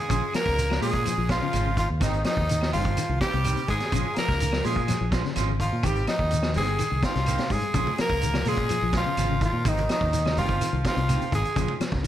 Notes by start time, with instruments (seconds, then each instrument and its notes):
Already playing: baritone saxophone G#3, tenor saxophone G#4
0.08 fingered electric bass A#1, clean electric guitar C#3 C#4 F4, muted clean electric guitar stroke, kick, closed hi-hat, claves, shekere
0.33 clean electric guitar F3, baritone saxophone A#3, tenor saxophone A#4, muted clean electric guitar stroke, muted fingered electric bass stroke, snare, closed hi-hat, claves, shekere
0.46 fingered electric bass C#2, muted clean electric guitar stroke, kick, snare
0.58 muted clean electric guitar stroke, closed hi-hat, shekere
0.70 clean electric guitar F3, snare, claves
0.81 fingered electric bass A#2, clean electric guitar G#3 C#4 F4, baritone saxophone G#3, tenor saxophone G#4, open hi-hat, shekere
0.93 clean electric guitar C#4, kick, closed hi-hat
1.06 clean electric guitar F3, closed hi-hat, claves, shekere
1.18 fingered electric bass A#1, clean electric guitar F3, muted clean electric guitar stroke
1.29 baritone saxophone F3, clean electric guitar G#3 C#4 F4, tenor saxophone F4, kick, snare, closed hi-hat, shekere
1.40 clean electric guitar C#3, muted clean electric guitar stroke
1.52 fingered electric bass G#1, clean electric guitar G#3 C#4 F4, closed hi-hat, claves, shekere
1.66 clean electric guitar C#3
1.76 clean electric guitar D#3, baritone saxophone F3, tenor saxophone F4, muted clean electric guitar stroke, kick, closed hi-hat, shekere
1.89 fingered electric bass D#2, muted clean electric guitar stroke
2.00 fingered electric bass G#1, clean electric guitar D#3 A#3 C4 G4, baritone saxophone D#3, tenor saxophone D#4, kick, snare, closed hi-hat, claves, shekere
2.13 closed hi-hat
2.24 baritone saxophone D#3, clean electric guitar F3, tenor saxophone D#4, muted clean electric guitar stroke, snare, closed hi-hat, claves, shekere
2.36 fingered electric bass D#2, muted clean electric guitar stroke, kick
2.48 clean electric guitar D#3, muted clean electric guitar stroke, closed hi-hat, shekere
2.61 clean electric guitar F3, muted clean electric guitar stroke, snare, claves
2.72 fingered electric bass G1, clean electric guitar D#3 G3 A#3 C4 G4, baritone saxophone F3, tenor saxophone F4, open hi-hat, shekere
2.85 clean electric guitar A#3 C4 G4, kick, closed hi-hat
2.97 clean electric guitar D#3, closed hi-hat, claves, shekere
3.08 fingered electric bass C2, clean electric guitar D#3, muted clean electric guitar stroke
3.20 clean electric guitar D#3 A#3 C4 G4, baritone saxophone G3, tenor saxophone G4, kick, snare, closed hi-hat, shekere
3.33 fingered electric bass C2, clean electric guitar C3, muted clean electric guitar stroke, closed hi-hat
3.44 clean electric guitar D#3 A#3 C4 G4, closed hi-hat, claves, shekere
3.57 clean electric guitar C3, closed hi-hat
3.68 fingered electric bass G#2, clean electric guitar D#3, baritone saxophone G#3, tenor saxophone G#4, muted clean electric guitar stroke, kick, closed hi-hat, shekere
3.80 muted clean electric guitar stroke, snare, closed hi-hat
3.91 fingered electric bass A#1, clean electric guitar C#3 F3 G#3 C#4 F4, kick, closed hi-hat, claves
3.95 shekere
4.14 clean electric guitar F3, baritone saxophone A#3, tenor saxophone A#4, muted fingered electric bass stroke, snare, closed hi-hat, claves
4.18 tenor saxophone A#4, shekere
4.28 fingered electric bass C#2, muted clean electric guitar stroke, kick, snare
4.40 clean electric guitar D#3, muted clean electric guitar stroke, closed hi-hat, shekere
4.52 clean electric guitar F3, muted clean electric guitar stroke, snare, claves
4.63 fingered electric bass A#2, clean electric guitar F3 G#3 C#4 F4, baritone saxophone G#3, tenor saxophone G#4, open hi-hat, shekere
4.75 clean electric guitar G#3 F4, muted clean electric guitar stroke, kick, closed hi-hat
4.88 clean electric guitar F3, snare, closed hi-hat, claves, shekere
5.00 fingered electric bass A#1, clean electric guitar F3, muted clean electric guitar stroke
5.11 clean electric guitar F3 G#3 C#4 F4, kick, snare, closed hi-hat, shekere
5.24 clean electric guitar C#3, muted clean electric guitar stroke, snare
5.35 fingered electric bass G#1, clean electric guitar F3 G#3 C#4 F4, snare, closed hi-hat, claves, shekere
5.49 clean electric guitar C#3
5.59 clean electric guitar D#3, baritone saxophone F3, tenor saxophone F4, muted clean electric guitar stroke, kick, closed hi-hat, shekere
5.71 fingered electric bass A#2, muted clean electric guitar stroke
5.83 fingered electric bass G#1, clean electric guitar D#3 C4 G4, tenor saxophone G4, muted clean electric guitar stroke, kick, closed hi-hat, claves, shekere
5.87 baritone saxophone G3
5.96 closed hi-hat
6.07 baritone saxophone D#3, clean electric guitar F3, tenor saxophone D#4, snare, closed hi-hat, claves, shekere
6.19 fingered electric bass D#2, muted clean electric guitar stroke, kick
6.31 clean electric guitar D#3, muted clean electric guitar stroke, closed hi-hat, shekere
6.43 clean electric guitar F3, muted clean electric guitar stroke, snare, claves
6.54 fingered electric bass G1, clean electric guitar D#3 G3 A#3 C4 G4, baritone saxophone G#3, tenor saxophone G#4, open hi-hat, shekere
6.59 tenor saxophone G#4
6.67 clean electric guitar A#3 G4, muted clean electric guitar stroke, closed hi-hat
6.79 clean electric guitar D#3, closed hi-hat, claves, shekere
6.91 fingered electric bass C2, clean electric guitar D#3, muted clean electric guitar stroke
7.02 clean electric guitar D#3 A#3 C4 G4, baritone saxophone F3, tenor saxophone F4, kick, snare, closed hi-hat, shekere
7.15 fingered electric bass C2, clean electric guitar C3, muted clean electric guitar stroke, snare, closed hi-hat
7.26 clean electric guitar D#3 A#3 C4 G4, closed hi-hat, claves, shekere
7.38 clean electric guitar C3, snare, closed hi-hat
7.50 fingered electric bass G#2, clean electric guitar G3, baritone saxophone G#3, tenor saxophone G#4, kick, open hi-hat, shekere
7.55 tenor saxophone G#4
7.62 muted clean electric guitar stroke, closed hi-hat
7.74 fingered electric bass A#1, clean electric guitar C#3 F3 G#3 C#4 F4, kick, closed hi-hat, high conga, low conga, claves, shekere
7.87 high conga
7.98 clean electric guitar F3, baritone saxophone A#3, tenor saxophone A#4, muted clean electric guitar stroke, muted fingered electric bass stroke, snare, closed hi-hat, claves, shekere
8.02 tenor saxophone A#4
8.10 fingered electric bass C#2, muted clean electric guitar stroke, kick
8.21 clean electric guitar D#3, muted clean electric guitar stroke, closed hi-hat, high conga, shekere
8.34 clean electric guitar F3, muted clean electric guitar stroke, snare, high conga, claves
8.45 fingered electric bass A#2, clean electric guitar F3 G#3 C#4 F4, baritone saxophone G#3, tenor saxophone G#4, open hi-hat, high conga, shekere
8.50 tenor saxophone G#4
8.57 clean electric guitar G#3 C#4 F4, kick, closed hi-hat
8.69 clean electric guitar F3, closed hi-hat, claves, shekere
8.82 fingered electric bass A#1, clean electric guitar F3, muted clean electric guitar stroke
8.93 clean electric guitar F3 G#3 C#4 F4, kick, snare, closed hi-hat, high conga, shekere
8.97 baritone saxophone F3, tenor saxophone F4
9.06 clean electric guitar C#3, muted clean electric guitar stroke
9.17 fingered electric bass G#1, clean electric guitar F3 G#3 C#4 F4, closed hi-hat, high conga, claves, shekere
9.30 clean electric guitar C#3, high conga
9.41 clean electric guitar D#3, tenor saxophone F4, muted clean electric guitar stroke, kick, closed hi-hat, low conga, shekere
9.46 baritone saxophone F3
9.53 fingered electric bass A#2, muted clean electric guitar stroke
9.65 fingered electric bass G#1, clean electric guitar D#3 A#3 C4 G4, baritone saxophone D#3, tenor saxophone D#4, kick, closed hi-hat, high conga, low conga, claves, shekere
9.77 closed hi-hat, high conga
9.89 baritone saxophone D#3, clean electric guitar F3, tenor saxophone D#4, muted clean electric guitar stroke, snare, closed hi-hat, claves, shekere
10.01 fingered electric bass D#2, kick, low conga
10.13 clean electric guitar D#3, muted clean electric guitar stroke, closed hi-hat, high conga, shekere
10.26 clean electric guitar F3, snare, high conga, claves
10.37 fingered electric bass G1, clean electric guitar D#3 G3 A#3 C4 G4, baritone saxophone F3, tenor saxophone F4, open hi-hat, high conga, shekere
10.49 clean electric guitar A#3 C4 G4, kick, closed hi-hat
10.61 clean electric guitar D#3, closed hi-hat, high conga, claves, shekere
10.73 fingered electric bass C2, clean electric guitar D#3, muted clean electric guitar stroke
10.85 clean electric guitar D#3 A#3 C4 G4, baritone saxophone F3, tenor saxophone F4, kick, snare, closed hi-hat, high conga, shekere
10.97 fingered electric bass C2, clean electric guitar C3, muted clean electric guitar stroke, closed hi-hat
11.09 clean electric guitar D#3 A#3 C4 G4, closed hi-hat, high conga, claves, shekere
11.21 clean electric guitar C3, closed hi-hat, high conga
11.32 fingered electric bass G#1, clean electric guitar D#3, baritone saxophone G#3, tenor saxophone G#4, muted clean electric guitar stroke, kick, closed hi-hat, low conga, shekere
11.45 muted clean electric guitar stroke, closed hi-hat
11.56 fingered electric bass A#1, clean electric guitar C#3 F3 G#3 C#4 F4, kick, closed hi-hat, high conga, low conga, claves, shekere
11.68 high conga
11.80 clean electric guitar F3, muted fingered electric bass stroke, muted clean electric guitar stroke, snare, closed hi-hat, claves, shekere
11.92 fingered electric bass C#2, muted clean electric guitar stroke, kick, snare, low conga
12.03 clean electric guitar D#3